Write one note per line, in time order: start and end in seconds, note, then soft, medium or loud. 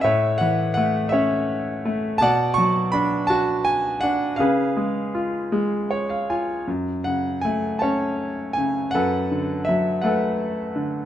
0.01 2.17 A2 medium
0.01 1.09 C#5 medium
0.01 0.40 E5 medium
0.38 1.81 E3 soft
0.38 0.72 F#5 medium
0.74 1.84 A3 soft
0.74 1.09 F#5 medium
1.09 2.17 C#5 soft
1.09 1.88 E5 medium
1.13 2.18 C#4 medium
1.85 2.20 A3 medium
2.18 4.35 B2 medium
2.18 2.57 A5 loud
2.22 3.26 D5 medium
2.22 3.26 F#5 medium
2.54 2.89 C#6 loud
2.58 3.99 F#3 medium
2.92 4.02 D4 medium
2.92 3.30 B5 medium
3.27 4.36 F#4 medium
3.27 3.62 A5 medium
3.65 3.99 G#5 medium
4.01 4.38 D4 soft
4.01 4.39 F#5 medium
4.36 6.63 C#3 medium
4.36 6.24 G#4 medium
4.36 6.24 B4 medium
4.36 6.08 F5 medium
4.77 5.51 G#3 soft
5.15 6.28 F4 soft
5.52 6.63 G#3 medium
5.91 6.08 C#5 medium
6.09 6.27 F5 soft
6.30 6.66 F4 soft
6.30 6.65 G#5 soft
6.67 8.90 F#2 soft
7.04 8.54 C#3 soft
7.04 7.44 F#5 medium
7.41 8.91 A3 soft
7.41 7.82 G#5 medium
7.79 8.90 C#5 soft
7.79 8.52 A5 medium
7.83 8.92 C#4 soft
8.53 8.93 G#5 medium
8.58 8.93 C#3 soft
8.91 10.00 A4 medium
8.91 9.68 F#5 medium
8.95 11.05 F#2 soft
8.95 10.00 B4 medium
9.32 10.72 D3 soft
9.65 11.05 F#3 soft
9.65 10.00 E5 medium
10.02 11.05 A3 soft
10.02 11.05 A4 soft
10.02 11.05 B4 soft
10.02 10.80 F#5 medium
10.76 11.05 D3 soft